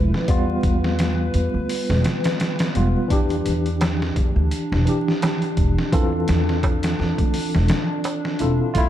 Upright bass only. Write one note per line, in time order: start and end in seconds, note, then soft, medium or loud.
0.00 0.11 E1 medium
0.29 0.60 E2 medium
0.63 1.31 E2 medium
1.34 1.52 E2 loud
1.54 1.68 D2 medium
1.89 2.03 E1 loud
2.76 2.93 E1 medium
3.11 3.42 E2 medium
3.46 4.14 E2 medium
4.16 4.34 E2 loud
4.36 4.50 D2 medium
4.72 4.85 E1 loud
5.57 5.75 E1 medium
5.93 6.25 E2 medium
6.29 6.96 E2 medium
7.00 7.17 E2 loud
7.19 7.32 D2 medium
7.56 7.68 E1 loud
8.40 8.58 E1 medium
8.75 8.89 E2 loud